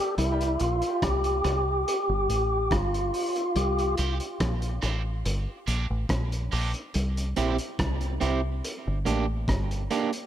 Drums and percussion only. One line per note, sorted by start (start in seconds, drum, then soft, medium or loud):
0.18 closed hi-hat medium
0.41 closed hi-hat medium
0.59 closed hi-hat medium
0.82 closed hi-hat soft
1.02 kick loud
1.02 cross-stick loud
1.02 closed hi-hat medium
1.24 closed hi-hat medium
1.44 cross-stick medium
1.44 closed hi-hat medium
1.88 closed hi-hat medium
2.30 closed hi-hat medium
2.71 kick loud
2.71 cross-stick loud
2.71 closed hi-hat medium
2.94 closed hi-hat medium
3.14 open hi-hat medium
3.36 closed hi-hat medium
3.56 closed hi-hat medium
3.78 closed hi-hat soft
3.97 closed hi-hat medium
4.20 closed hi-hat medium
4.40 kick loud
4.40 cross-stick loud
4.40 closed hi-hat medium
4.62 closed hi-hat medium
4.82 cross-stick medium
4.82 closed hi-hat medium
5.25 closed hi-hat medium
5.68 closed hi-hat medium
6.09 kick loud
6.09 cross-stick loud
6.09 closed hi-hat medium
6.32 closed hi-hat medium
6.52 open hi-hat medium
6.74 closed hi-hat medium
6.94 closed hi-hat medium
7.17 closed hi-hat medium
7.36 closed hi-hat medium
7.58 closed hi-hat medium
7.79 kick loud
7.79 cross-stick loud
7.79 closed hi-hat medium
8.01 closed hi-hat soft
8.21 closed hi-hat medium
8.64 closed hi-hat medium
9.06 closed hi-hat medium
9.48 kick loud
9.48 cross-stick loud
9.48 closed hi-hat medium
9.71 closed hi-hat medium
9.91 closed hi-hat medium
10.13 closed hi-hat medium